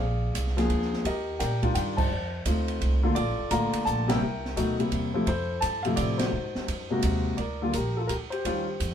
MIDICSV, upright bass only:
0, 0, Header, 1, 3, 480
1, 0, Start_track
1, 0, Key_signature, -2, "minor"
1, 0, Tempo, 352319
1, 1424, Time_signature, 3, 2, 24, 8
1, 12183, End_track
2, 0, Start_track
2, 0, Title_t, "Upright bass"
2, 0, Program_c, 0, 32
2, 0, Note_on_c, 0, 34, 79
2, 447, Note_off_c, 0, 34, 0
2, 470, Note_on_c, 0, 36, 86
2, 933, Note_off_c, 0, 36, 0
2, 951, Note_on_c, 0, 38, 87
2, 1413, Note_off_c, 0, 38, 0
2, 1430, Note_on_c, 0, 39, 87
2, 1892, Note_off_c, 0, 39, 0
2, 1910, Note_on_c, 0, 46, 93
2, 2372, Note_off_c, 0, 46, 0
2, 2389, Note_on_c, 0, 43, 92
2, 2847, Note_off_c, 0, 43, 0
2, 2855, Note_on_c, 0, 41, 82
2, 3324, Note_off_c, 0, 41, 0
2, 3344, Note_on_c, 0, 38, 86
2, 3809, Note_off_c, 0, 38, 0
2, 3828, Note_on_c, 0, 36, 90
2, 4291, Note_off_c, 0, 36, 0
2, 4307, Note_on_c, 0, 34, 78
2, 4462, Note_off_c, 0, 34, 0
2, 4462, Note_on_c, 0, 33, 58
2, 4611, Note_off_c, 0, 33, 0
2, 4620, Note_on_c, 0, 29, 60
2, 4769, Note_off_c, 0, 29, 0
2, 4779, Note_on_c, 0, 33, 90
2, 5069, Note_off_c, 0, 33, 0
2, 5265, Note_on_c, 0, 34, 91
2, 5724, Note_off_c, 0, 34, 0
2, 5732, Note_on_c, 0, 36, 84
2, 6202, Note_off_c, 0, 36, 0
2, 6221, Note_on_c, 0, 38, 88
2, 6687, Note_off_c, 0, 38, 0
2, 6700, Note_on_c, 0, 40, 80
2, 7166, Note_off_c, 0, 40, 0
2, 7174, Note_on_c, 0, 41, 79
2, 7643, Note_off_c, 0, 41, 0
2, 7660, Note_on_c, 0, 43, 94
2, 8126, Note_off_c, 0, 43, 0
2, 8140, Note_on_c, 0, 45, 84
2, 8606, Note_off_c, 0, 45, 0
2, 8615, Note_on_c, 0, 44, 77
2, 8907, Note_off_c, 0, 44, 0
2, 9104, Note_on_c, 0, 42, 85
2, 9569, Note_off_c, 0, 42, 0
2, 9583, Note_on_c, 0, 39, 92
2, 10048, Note_off_c, 0, 39, 0
2, 10064, Note_on_c, 0, 38, 73
2, 10529, Note_off_c, 0, 38, 0
2, 10550, Note_on_c, 0, 34, 82
2, 11012, Note_off_c, 0, 34, 0
2, 11026, Note_on_c, 0, 38, 76
2, 11491, Note_off_c, 0, 38, 0
2, 11513, Note_on_c, 0, 39, 73
2, 11974, Note_off_c, 0, 39, 0
2, 11990, Note_on_c, 0, 41, 88
2, 12183, Note_off_c, 0, 41, 0
2, 12183, End_track
3, 0, Start_track
3, 0, Title_t, "Muted upright bass strokes"
3, 5081, Note_on_c, 9, 29, 40
3, 5217, Note_off_c, 9, 29, 0
3, 8934, Note_on_c, 9, 29, 41
3, 9070, Note_off_c, 9, 29, 0
3, 12183, End_track
0, 0, End_of_file